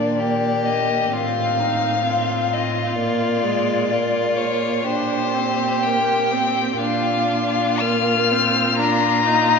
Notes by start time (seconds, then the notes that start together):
Already playing: A#2 A#3 D4 D5
0.18 A#3 G4
0.65 D#5
1.12 A2 C4 F4 F5
1.60 D#4
2.06 C4 F4
2.53 D#5
2.97 A#2 A#3 D5
3.45 G#3
3.91 A#3 F4
4.37 C#5
4.84 D4 G4 C5
5.35 C4
5.83 A#3 G5
6.32 C4
6.77 A#2 D4 F4 F5
7.80 A#3 F6
8.32 C4
8.77 D4 F4 A#5
9.26 D#4